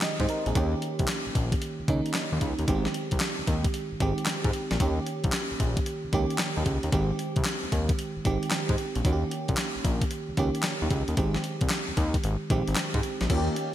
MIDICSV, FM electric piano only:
0, 0, Header, 1, 2, 480
1, 0, Start_track
1, 0, Key_signature, -4, "major"
1, 0, Tempo, 530973
1, 501, Time_signature, 4, 2, 24, 8
1, 12425, End_track
2, 0, Start_track
2, 0, Title_t, "FM electric piano"
2, 0, Program_c, 0, 5
2, 0, Control_c, 0, 64, 127
2, 0, Note_on_c, 0, 51, 85
2, 0, Note_on_c, 0, 56, 84
2, 0, Note_on_c, 0, 60, 74
2, 0, Note_on_c, 0, 67, 95
2, 29, Note_on_c, 0, 75, 60
2, 34, Note_off_c, 0, 67, 0
2, 34, Note_on_c, 0, 67, 48
2, 174, Note_off_c, 0, 75, 0
2, 176, Note_off_c, 0, 67, 0
2, 185, Note_on_c, 0, 72, 66
2, 190, Note_on_c, 0, 63, 60
2, 261, Note_off_c, 0, 72, 0
2, 264, Note_off_c, 0, 63, 0
2, 269, Note_on_c, 0, 70, 71
2, 296, Note_off_c, 0, 51, 0
2, 298, Note_off_c, 0, 56, 0
2, 414, Note_off_c, 0, 70, 0
2, 426, Note_on_c, 0, 68, 59
2, 431, Note_off_c, 0, 60, 0
2, 431, Note_on_c, 0, 60, 50
2, 504, Note_on_c, 0, 51, 83
2, 508, Note_on_c, 0, 58, 72
2, 511, Note_on_c, 0, 61, 77
2, 513, Control_c, 0, 64, 0
2, 516, Note_on_c, 0, 67, 92
2, 650, Note_off_c, 0, 68, 0
2, 653, Note_off_c, 0, 60, 0
2, 665, Control_c, 0, 64, 127
2, 1191, Note_off_c, 0, 51, 0
2, 1193, Note_off_c, 0, 58, 0
2, 1195, Note_off_c, 0, 61, 0
2, 1197, Note_off_c, 0, 67, 0
2, 1703, Note_on_c, 0, 51, 84
2, 1707, Note_on_c, 0, 58, 73
2, 1710, Note_on_c, 0, 61, 73
2, 1714, Note_on_c, 0, 63, 88
2, 2217, Note_off_c, 0, 51, 0
2, 2219, Note_off_c, 0, 58, 0
2, 2220, Note_off_c, 0, 61, 0
2, 2222, Note_off_c, 0, 63, 0
2, 2422, Note_on_c, 0, 51, 85
2, 2427, Note_on_c, 0, 56, 71
2, 2430, Note_on_c, 0, 59, 61
2, 2433, Control_c, 0, 64, 0
2, 2433, Note_on_c, 0, 67, 88
2, 2487, Note_on_c, 0, 60, 71
2, 2500, Note_off_c, 0, 59, 0
2, 2601, Control_c, 0, 64, 127
2, 3111, Note_off_c, 0, 51, 0
2, 3113, Note_off_c, 0, 56, 0
2, 3116, Note_off_c, 0, 67, 0
2, 3143, Note_off_c, 0, 60, 0
2, 3623, Note_on_c, 0, 51, 88
2, 3627, Note_on_c, 0, 56, 75
2, 3631, Note_on_c, 0, 60, 77
2, 3634, Note_on_c, 0, 67, 94
2, 4137, Note_off_c, 0, 51, 0
2, 4139, Note_off_c, 0, 56, 0
2, 4141, Note_off_c, 0, 60, 0
2, 4142, Note_off_c, 0, 67, 0
2, 4344, Note_on_c, 0, 51, 78
2, 4347, Note_on_c, 0, 58, 68
2, 4351, Control_c, 0, 64, 0
2, 4352, Note_on_c, 0, 61, 73
2, 4355, Note_on_c, 0, 67, 89
2, 4490, Control_c, 0, 64, 127
2, 5031, Note_off_c, 0, 51, 0
2, 5033, Note_off_c, 0, 58, 0
2, 5035, Note_off_c, 0, 61, 0
2, 5037, Note_off_c, 0, 67, 0
2, 5542, Note_on_c, 0, 51, 86
2, 5546, Note_on_c, 0, 58, 80
2, 5549, Note_on_c, 0, 61, 75
2, 5553, Note_on_c, 0, 67, 98
2, 6056, Note_off_c, 0, 51, 0
2, 6058, Note_off_c, 0, 58, 0
2, 6060, Note_off_c, 0, 61, 0
2, 6062, Note_off_c, 0, 67, 0
2, 6261, Note_on_c, 0, 51, 80
2, 6265, Note_on_c, 0, 56, 72
2, 6268, Note_on_c, 0, 60, 77
2, 6273, Note_on_c, 0, 67, 90
2, 6274, Control_c, 0, 64, 0
2, 6440, Control_c, 0, 64, 127
2, 6950, Note_off_c, 0, 51, 0
2, 6952, Note_off_c, 0, 56, 0
2, 6954, Note_off_c, 0, 60, 0
2, 6956, Note_off_c, 0, 67, 0
2, 7462, Note_on_c, 0, 51, 93
2, 7465, Note_on_c, 0, 56, 73
2, 7468, Note_on_c, 0, 60, 83
2, 7472, Note_on_c, 0, 67, 94
2, 7976, Note_off_c, 0, 51, 0
2, 7977, Note_off_c, 0, 56, 0
2, 7979, Note_off_c, 0, 60, 0
2, 7981, Note_off_c, 0, 67, 0
2, 8180, Note_on_c, 0, 51, 85
2, 8184, Note_on_c, 0, 58, 77
2, 8187, Note_on_c, 0, 61, 73
2, 8192, Note_on_c, 0, 66, 73
2, 8193, Control_c, 0, 64, 0
2, 8249, Note_on_c, 0, 67, 85
2, 8261, Note_off_c, 0, 66, 0
2, 8344, Control_c, 0, 64, 127
2, 8869, Note_off_c, 0, 51, 0
2, 8871, Note_off_c, 0, 58, 0
2, 8873, Note_off_c, 0, 61, 0
2, 8904, Note_off_c, 0, 67, 0
2, 9382, Note_on_c, 0, 51, 81
2, 9386, Note_on_c, 0, 58, 77
2, 9389, Note_on_c, 0, 61, 79
2, 9393, Note_on_c, 0, 67, 91
2, 9896, Note_off_c, 0, 51, 0
2, 9898, Note_off_c, 0, 58, 0
2, 9900, Note_off_c, 0, 61, 0
2, 9902, Note_off_c, 0, 67, 0
2, 10103, Note_on_c, 0, 51, 78
2, 10106, Note_on_c, 0, 56, 73
2, 10110, Note_on_c, 0, 60, 69
2, 10113, Note_on_c, 0, 67, 84
2, 10114, Control_c, 0, 64, 0
2, 10262, Control_c, 0, 64, 127
2, 10791, Note_off_c, 0, 51, 0
2, 10792, Note_off_c, 0, 56, 0
2, 10794, Note_off_c, 0, 60, 0
2, 10796, Note_off_c, 0, 67, 0
2, 11302, Note_on_c, 0, 51, 87
2, 11307, Note_on_c, 0, 56, 79
2, 11309, Note_on_c, 0, 60, 77
2, 11313, Note_on_c, 0, 67, 93
2, 11816, Note_off_c, 0, 51, 0
2, 11818, Note_off_c, 0, 56, 0
2, 11820, Note_off_c, 0, 60, 0
2, 11822, Note_off_c, 0, 67, 0
2, 12022, Note_on_c, 0, 51, 77
2, 12026, Note_on_c, 0, 58, 78
2, 12029, Note_on_c, 0, 61, 81
2, 12033, Note_on_c, 0, 65, 71
2, 12034, Control_c, 0, 64, 0
2, 12091, Note_on_c, 0, 67, 91
2, 12102, Note_off_c, 0, 65, 0
2, 12215, Control_c, 0, 64, 127
2, 12425, Note_off_c, 0, 51, 0
2, 12425, Note_off_c, 0, 58, 0
2, 12425, Note_off_c, 0, 61, 0
2, 12425, Note_off_c, 0, 67, 0
2, 12425, End_track
0, 0, End_of_file